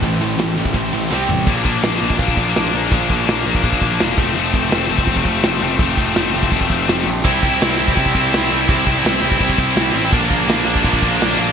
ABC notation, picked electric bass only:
X:1
M:4/4
L:1/8
Q:1/4=167
K:Bblyd
V:1 name="Picked electric bass" clef=bass
A,,, A,,, A,,, A,,, A,,, A,,, C,, A,,, | B,,, B,,, B,,, B,,, B,,, B,,, B,,, B,,, | B,,, B,,, B,,, B,,, B,,, B,,, E,,, F,,, | F,,, F,,, F,,, F,,, F,,, F,,, F,,, F,,, |
F,,, F,,, F,,, F,,, F,,, F,,, F,,, B,,, | C,, C,, C,, C,, C,, C,, C,, C,, | C,, C,, C,, C,, C,, C,, C,, A,,, | B,,, B,,, B,,, B,,, B,,, B,,, B,,, B,,, |]